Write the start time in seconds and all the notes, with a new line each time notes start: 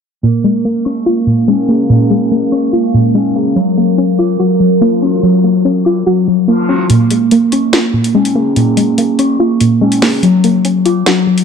0.23 A#2 G#3 A#3 C#4 A#4 F5
0.44 G#3
0.65 A#3
0.85 C#4 C#6
1.06 A#3 F4
1.27 A#2
1.48 G#3 C#4
1.69 A#3 G#4
1.89 A#2 A#3
2.10 G#3
2.32 A#3
2.52 C#4 C#6
2.73 A#3 F4
2.94 A#2
3.14 G#3 C#4
3.36 A#3 G#4
3.56 F#3 A#4
3.77 A#3
3.98 C#4
4.19 F4 D6
4.39 F#3 F#4
4.60 F#3
4.81 A#3 F4
5.02 C#4 F#4
5.23 F#3
5.44 A#3
5.65 C#4
5.85 F4 D6
6.06 F#3 F#4
6.28 F#3
6.48 A#3 F4
6.69 C#4 F#4
6.90 A#2 A#3, closed hi-hat
7.11 G#3, closed hi-hat
7.31 A#3, closed hi-hat
7.52 C#4 C#6, closed hi-hat
7.73 A#3 F4, snare, closed hi-hat
7.94 A#2
8.04 closed hi-hat
8.15 G#3 C#4
8.25 closed hi-hat
8.35 A#3 G#4
8.56 A#2 A#3, closed hi-hat
8.77 G#3, closed hi-hat
8.98 A#3, closed hi-hat
9.19 C#4 C#6, closed hi-hat
9.40 A#3 F4
9.61 A#2, closed hi-hat
9.81 G#3 C#4
9.92 closed hi-hat
10.02 A#3 G#4, snare, open hi-hat
10.23 F#3, closed hi-hat
10.44 A#3, closed hi-hat
10.65 C#4, closed hi-hat
10.85 F4 D6, closed hi-hat
11.06 F#3 F#4, snare, closed hi-hat
11.27 F#3
11.38 closed hi-hat